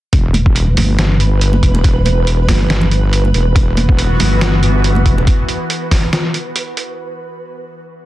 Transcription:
0.13 E1 B4, kick, closed hi-hat
0.34 closed hi-hat, muted conga, high conga
0.46 kick
0.56 closed hi-hat
0.77 G1, open hi-hat, high conga, low conga
0.99 snare, closed hi-hat
1.20 closed hi-hat
1.41 closed hi-hat
1.53 muted conga, high conga
1.63 E1, kick, closed hi-hat
1.75 muted conga
1.84 kick, closed hi-hat
2.05 closed hi-hat, muted conga, high conga
2.27 closed hi-hat
2.48 G1, kick, snare, open hi-hat, high conga, low conga
2.70 snare, closed hi-hat
2.81 muted conga, low conga
2.91 closed hi-hat
3.13 closed hi-hat
3.25 high conga
3.34 E1, closed hi-hat
3.56 E1 E3 B3 F#4, kick, closed hi-hat
3.77 closed hi-hat, muted conga, high conga
3.89 kick
3.99 closed hi-hat
4.20 G1, open hi-hat, high conga, low conga
4.41 snare, closed hi-hat
4.63 closed hi-hat
4.84 closed hi-hat
4.95 muted conga, high conga
5.06 E1, kick, closed hi-hat
5.18 muted conga
5.27 kick, closed hi-hat
5.49 closed hi-hat
5.70 closed hi-hat
5.91 kick, snare, open hi-hat
6.13 snare, closed hi-hat
6.34 closed hi-hat
6.56 closed hi-hat
6.77 closed hi-hat

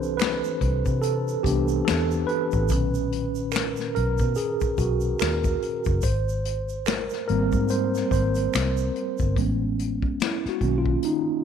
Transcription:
Already playing: C2 E3 C4 D4 G4 A4 B4 C5
0.03 shaker
0.17 B4, finger snap, closed hi-hat, shaker
0.22 finger snap, snare
0.44 shaker
0.61 C2, kick, closed hi-hat
0.86 C3, kick, shaker
1.02 A4, closed hi-hat, shaker
1.28 shaker
1.43 C2 E3 B3 D4 G4, kick, closed hi-hat, shaker
1.68 shaker
1.85 A4, finger snap, snare, closed hi-hat, shaker
1.90 E2
2.11 shaker
2.27 B4, closed hi-hat
2.52 A1, kick, shaker
2.69 B1 A#2 D#3, kick, closed hi-hat, shaker
2.73 C#4
2.94 shaker
3.12 closed hi-hat
3.35 shaker
3.52 A#4, finger snap, closed hi-hat, shaker
3.56 finger snap, snare
3.76 snare, shaker
3.95 B1 A#4, closed hi-hat
4.18 B2, kick, closed hi-hat, shaker
4.35 G#4, closed hi-hat, shaker
4.61 muted fingered electric bass stroke, kick, shaker
4.78 B1 F#4, kick, closed hi-hat, shaker
5.00 shaker
5.20 D#2 A#4, finger snap, snare, shaker
5.22 finger snap, closed hi-hat
5.44 kick, shaker
5.62 closed hi-hat
5.85 F#1, kick, shaker
6.02 G#1 C5, kick, closed hi-hat, shaker
6.29 shaker
6.45 closed hi-hat
6.69 shaker
6.86 A#4, finger snap, snare, closed hi-hat, shaker
6.88 finger snap
7.09 snare, shaker
7.28 G#1 G3 A#3 C4 A#4, closed hi-hat
7.52 G#2, kick, shaker
7.69 C5, closed hi-hat, shaker
7.95 snare, shaker
8.11 G#1 C5, kick, closed hi-hat, shaker
8.35 closed hi-hat, shaker
8.54 C2, finger snap, snare, shaker
8.56 finger snap, closed hi-hat
8.77 shaker
8.96 closed hi-hat
9.18 G1, kick, shaker
9.36 A1 G#3 B3 C#4, kick, closed hi-hat
9.79 closed hi-hat
10.02 kick
10.20 E4, finger snap, snare, closed hi-hat
10.45 F#4, muted fingered electric bass stroke, snare
10.61 B1 D#3 A#3 C#4, kick, closed hi-hat
10.78 F4
10.86 kick
11.03 D#4, closed hi-hat

